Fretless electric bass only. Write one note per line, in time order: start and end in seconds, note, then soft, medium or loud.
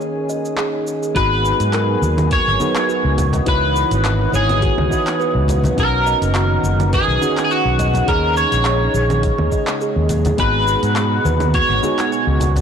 1.16 1.51 G#1 medium
1.60 1.95 G#2 medium
2.02 2.38 D#2 medium
2.47 2.55 G#1 medium
3.05 3.39 C#2 medium
3.47 3.82 C#2 loud
3.91 4.26 G#1 medium
4.33 4.69 G#1 medium
4.78 4.86 C#2 medium
5.35 5.70 C#2 medium
5.78 6.13 B1 medium
6.22 6.56 F#1 medium
6.63 6.99 F#1 medium
7.08 7.17 B1 medium
7.65 8.00 B1 medium
8.08 8.44 D#2 loud
8.52 8.87 A#1 medium
8.94 9.30 A#1 medium
9.39 9.48 D#2 medium
9.96 10.31 D#2 medium
10.39 10.74 G#1 medium
10.83 11.18 G#2 medium
11.25 11.61 D#2 medium
11.70 11.78 G#1 medium
12.27 12.61 C#2 medium